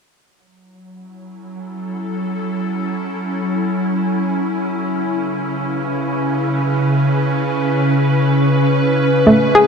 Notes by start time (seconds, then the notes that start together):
0.21 F#3
0.62 E4
0.90 C#4
1.16 A4
4.74 C#3
5.03 B4
9.27 A2 A3
9.36 A3
9.55 G#4